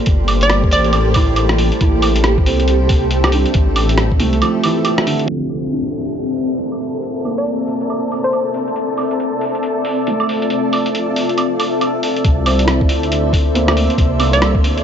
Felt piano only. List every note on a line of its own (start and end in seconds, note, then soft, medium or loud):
0.00 0.19 A4 medium
0.00 0.41 D5 medium
0.72 1.71 C5 medium
1.16 1.80 E4 medium
1.81 2.80 E4 medium
2.47 3.46 C4 medium
3.34 4.33 D4 medium
4.20 5.19 A3 medium
4.42 5.24 F3 medium
4.65 5.47 E3 medium
5.07 5.47 D3 medium
5.26 5.64 F3 medium
5.72 6.71 D4 medium
7.25 8.24 A#3 soft
10.08 11.06 A3 medium
12.46 13.45 C4 medium
12.65 13.58 E4 medium
13.54 14.19 A#3 medium
13.54 14.54 C4 medium
14.20 14.84 A#3 medium